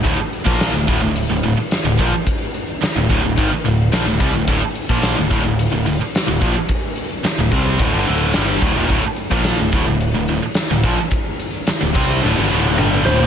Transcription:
<<
  \new Staff \with { instrumentName = "Lead electric guitar" } { \time 4/4 \key d \minor \tempo 4 = 108 r1 | r1 | r1 | r1 |
r1 | r2. r8 c''8 | }
  \new Staff \with { instrumentName = "Distorted electric guitar" } { \clef bass \time 4/4 \key d \minor <d, a,>16 r8 <bes, f bes>8 <d, a,>16 <d, a,>16 <d, a,>8 <d, a,>16 <d, a,>16 r8 <d, a,>16 <bes, f>16 r16 | r4 r16 <d, a,>16 <d, a,>16 <d, a,>16 <gis, ees>16 r16 <d, a,>8 <bes, f>16 <d, a,>16 <c g>16 <d, a,>16 | <d, a,>16 r8 <bes, f bes>8 <d, a,>16 <d, a,>16 <d, a,>8 <d, a,>16 <d, a,>16 r8 <d, a,>16 <bes, f>16 r16 | r4 r16 <d, a,>16 <c g c'>8 <d, a,>16 <g, d>16 <d, a, d>8 <g, d g>8 <d, a,>16 <ees, bes,>16 |
<d, a,>16 r8 <bes, f bes>8 <d, a,>16 <d, a,>16 <d, a,>8 <d, a,>16 <d, a,>16 r8 <d, a,>16 <bes, f>16 r16 | r4 r16 <d, a,>16 <c g c'>8 <d, a,>16 <g, d>16 <d, a, d>8 <g, d g>8 <d, a,>16 <ees, bes,>16 | }
  \new Staff \with { instrumentName = "Distorted electric guitar" } { \clef bass \time 4/4 \key d \minor <d, a,>16 r8 <bes, f bes>8 <d, a,>16 <d, a,>16 <d, a,>8 <d, a,>16 <d, a,>16 r8 <d, a,>16 <bes, f>16 r16 | r4 r16 <d, a,>16 <d, a,>16 <d, a,>16 <gis, ees>16 r16 <d, a,>8 <bes, f>16 <d, a,>16 <c g>16 <d, a,>16 | <d, a,>16 r8 <bes, f bes>8 <d, a,>16 <d, a,>16 <d, a,>8 <d, a,>16 <d, a,>16 r8 <d, a,>16 <bes, f>16 r16 | r4 r16 <d, a,>16 <c g c'>8 <d, a,>16 <g, d>16 <d, a, d>8 <g, d g>8 <d, a,>16 <ees, bes,>16 |
<d, a,>16 r8 <bes, f bes>8 <d, a,>16 <d, a,>16 <d, a,>8 <d, a,>16 <d, a,>16 r8 <d, a,>16 <bes, f>16 r16 | r4 r16 <d, a,>16 <c g c'>8 <d, a,>16 <g, d>16 <d, a, d>8 <g, d g>8 <d, a,>16 <ees, bes,>16 | }
  \new Staff \with { instrumentName = "Picked electric bass" } { \clef bass \time 4/4 \key d \minor d,,16 r8 bes,,8 d,,16 d,,16 d,,8 d,,16 d,,16 r8 d,,16 bes,,16 r16 | r4 r16 d,,16 d,,16 d,,16 gis,,16 r16 d,,8 bes,,16 d,,16 c,16 d,,16 | d,,16 r8 bes,,8 d,,16 d,,16 d,,8 d,,16 d,,16 r8 d,,16 bes,,16 r16 | r4 r16 d,,16 c,8 d,,16 g,,16 d,,8 g,,8 d,,16 ees,,16 |
d,,16 r8 bes,,8 d,,16 d,,16 d,,8 d,,16 d,,16 r8 d,,16 bes,,16 r16 | r4 r16 d,,16 c,8 d,,16 g,,16 d,,8 g,,8 d,,16 ees,,16 | }
  \new DrumStaff \with { instrumentName = "Drums" } \drummode { \time 4/4 <hh bd>8 hh16 bd16 <hh sn>8 <hh bd>8 hh8 hh8 <hh sn>8 <hh bd>8 | <hh bd>8 hh8 <hh sn>8 <hh bd>8 <hh bd>8 hh8 <hh sn>8 <hh bd>8 | <hh bd>8 hh16 bd16 <hh sn>8 <hh bd>8 hh8 hh8 <hh sn>8 <hh bd>8 | <hh bd>8 hh8 <hh sn>8 <hh bd>8 <hh bd>8 hh8 <hh sn>8 <hh bd>8 |
<hh bd>8 hh16 bd16 <hh sn>8 <hh bd>8 hh8 hh8 <hh sn>8 <hh bd>8 | <hh bd>8 hh8 <hh sn>8 <hh bd>8 sn16 sn8 tommh16 toml8 tomfh16 tomfh16 | }
>>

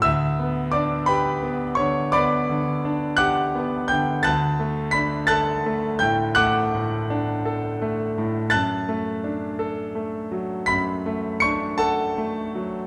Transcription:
<<
  \new Staff \with { instrumentName = "Grand piano" } { \time 12/8 \key d \major \tempo 4. = 56 <e'' e'''>4 <d'' d'''>8 <b' g'' b''>4 <cis'' cis'''>8 <d'' b'' d'''>4. <fis'' d''' fis'''>4 <g'' g'''>8 | <a'' fis''' a'''>4 <b'' b'''>8 <a'' fis''' a'''>4 <g'' g'''>8 <fis'' d''' fis'''>2. | <a'' fis''' a'''>2. <b'' b'''>4 <cis''' cis''''>8 <a' fis'' a''>4. | }
  \new Staff \with { instrumentName = "Grand piano" } { \time 12/8 \key d \major d,8 b8 d'8 g'8 b8 d8 b8 d8 d'8 g'8 b8 d8 | d,8 a8 d'8 a'8 a8 a,8 a8 a,8 d'8 a'8 a8 a,8 | fis,8 a8 d'8 a'8 a8 fis8 fis,8 a8 d'4 a8 fis8 | }
>>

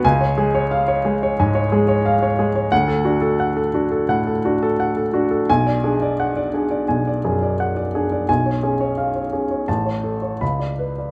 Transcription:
<<
  \new Staff \with { instrumentName = "Grand piano" } { \time 4/4 \key cis \phrygian \tempo 4 = 86 << { gis''8 r2. r8 | fis''8 r2. r8 | gis''8 r2. r8 | gis''8 r4. a''8 r8 b''8 r8 | } \\ { r16 cis''16 gis'16 cis''16 eis''16 cis''16 gis'16 cis''16 gis''16 cis''16 gis'16 cis''16 eis''16 cis''16 gis'16 cis''16 | r16 a'16 fis'16 a'16 fis''16 a'16 fis'16 a'16 fis''16 a'16 fis'16 a'16 fis''16 a'16 fis'16 a'16 | r16 d''16 gis'16 d''16 fis''16 d''16 gis'16 d''16 gis''16 d''16 gis'16 d''16 fis''16 d''16 gis'16 d''16 | r16 cis''16 gis'16 cis''16 eis''16 cis''16 gis'16 cis''16 r16 cis''16 a'16 cis''16 r16 d''16 b'16 d''16 | } >> }
  \new Staff \with { instrumentName = "Grand piano" } { \clef bass \time 4/4 \key cis \phrygian cis,8 gis4 gis8 gis,8 gis4 gis8 | d,8 d'4 d'8 a,8 d'4 d'8 | b,,8 d'4 d'8 b,,8 fis,4 d'8 | b,,8 cis'4 cis'8 a,,4 cis,4 | }
>>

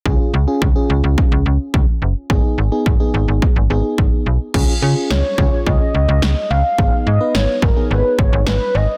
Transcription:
<<
  \new Staff \with { instrumentName = "Soft synth lead" } { \time 4/4 \key des \mixolydian \tempo 4 = 107 r1 | r1 | r4 des''4 ees''4. f''8~ | f''8 ees''8 des''8 bes'8 ces''8 des''8 ces''8 ees''8 | }
  \new Staff \with { instrumentName = "FM electric piano" } { \time 4/4 \key des \mixolydian <des' f' aes'>8 r16 <des' f' aes'>16 r16 <des' f' aes'>4. r4 r16 | <ces' ees' aes'>8 r16 <ces' ees' aes'>16 r16 <ces' ees' aes'>8. r8 <ces' ees' aes'>4 r8 | <des' f' aes'>16 r16 <des' f' aes'>8. r16 <des' f' aes'>4. r4 | <ces' ees' aes'>8 r16 <ces' ees' ces''>8. r16 <ces' ees' aes'>4. r8. | }
  \new Staff \with { instrumentName = "FM bass" } { \clef bass \time 4/4 \key des \mixolydian des,16 r16 des,16 r16 des,16 r16 des,16 des,16 r16 des,16 des,16 r16 des,16 r16 ges,,16 r16 | aes,,16 r16 aes,,16 r16 aes,,16 r16 aes,,16 aes,,16 r16 aes,,16 aes,,16 r16 aes,,16 r16 ces,16 r16 | des,16 r16 des16 r16 des,16 r16 des,16 r16 des,16 r16 des,16 des,16 des,16 r16 des,16 r16 | aes,,16 r16 aes,16 r16 aes,,16 r16 aes,,16 r16 aes,,16 r16 aes,,16 aes,,16 aes,,16 r16 aes,,16 r16 | }
  \new DrumStaff \with { instrumentName = "Drums" } \drummode { \time 4/4 bd4 bd4 bd4 bd4 | bd4 bd4 bd4 bd4 | <cymc bd>4 sn8 bd8 bd4 sn4 | bd4 sn8 bd8 r8 bd8 sn4 | }
>>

